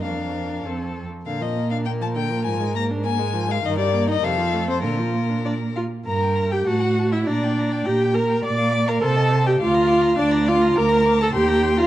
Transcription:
<<
  \new Staff \with { instrumentName = "Violin" } { \time 2/4 \key bes \major \tempo 4 = 102 f''4 r4 | f''16 ees''8 f''16 g''16 a''16 g''8 | aes''8 bes''8 aes''8. f''16 | ees''16 d''8 ees''16 f''8. c''16 |
bes'4. r8 | bes''16 g''16 bes''16 g''16 a''16 fis''16 a''16 fis''16 | bes''16 g''16 bes''16 g''16 bes''16 g''16 bes''16 g''16 | d''16 f''16 d''16 f''16 c''16 ees''16 c''16 ees''16 |
d'''16 bes''16 d'''16 bes''16 d'''16 bes''16 d'''16 bes''16 | d'''16 bes''16 d'''16 bes''16 c'''16 bes''16 c'''16 bes''16 | }
  \new Staff \with { instrumentName = "Violin" } { \time 2/4 \key bes \major bes'4 a'8 r8 | bes'2~ | bes'2 | bes'4 a'4 |
f'4 d''8 f''8 | bes''8. g''16 fis''8. e''16 | d''4 g''8 bes''8 | d'''8. bes''16 a''8. g''16 |
f''4 d''8 f''8 | bes''8. a''16 g''8. f''16 | }
  \new Staff \with { instrumentName = "Viola" } { \time 2/4 \key bes \major d'4 c'8. r16 | d16 f16 bes16 d'16 bes16 f16 d16 f16 | f16 aes16 bes16 d'16 bes16 aes16 f16 aes16 | ees16 g16 bes16 ees'16 c16 f16 a16 c'16 |
d16 f16 bes16 d'16 d'8 f'8 | bes'8. g'16 fis'8. e'16 | d'4 g'8 bes'8 | d''8. bes'16 a'8. g'16 |
f'4 d'8 f'8 | bes'8. a'16 g'8. f'16 | }
  \new Staff \with { instrumentName = "Cello" } { \clef bass \time 2/4 \key bes \major f,4 f,8 r8 | bes,2 | aes,2 | g,4 f,4 |
bes,4. r8 | g,4 a,4 | bes,4 bes,4 | bes,4 c4 |
d,4 d,4 | d,4 ees,4 | }
>>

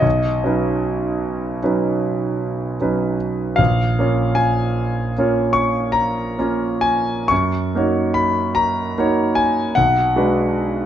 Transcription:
\new Staff \with { instrumentName = "Grand piano" } { \time 9/8 \key b \lydian \tempo 4. = 50 << { dis''1 r8 | eis''4 gis''4. cis'''8 ais''4 gis''8 | cis'''4 b''8 ais''4 gis''8 fis''4. | } \\ { b,,8 <fis cis' dis' b'>4. <fis cis' dis' b'>4. <fis cis' dis' b'>4 | ais,,8 <ais cis' eis' cis''>4. <ais cis' eis' cis''>4. <ais cis' eis' cis''>4 | fis,8 <ais dis' fis' cis''>4. <ais dis' fis' cis''>4 b,,8 <gis d' fis' b'>4 | } >> }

